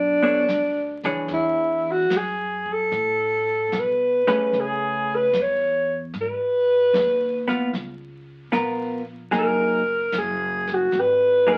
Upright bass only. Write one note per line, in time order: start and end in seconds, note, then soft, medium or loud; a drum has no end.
0.00 0.46 B1 medium
0.48 1.26 D2 medium
1.29 2.08 E2 medium
2.10 2.89 F#2 medium
2.92 3.70 A2 medium
3.73 4.24 B2 medium
4.28 muted upright bass stroke soft
4.52 5.30 C#3 medium
5.33 6.11 E2 medium
6.14 6.91 G#2 medium
6.93 7.71 D#2 medium
7.73 8.50 C#2 medium
8.53 9.30 A#1 medium
9.33 10.10 F#1 medium
10.12 10.90 F#1 medium
10.93 11.58 G#1 medium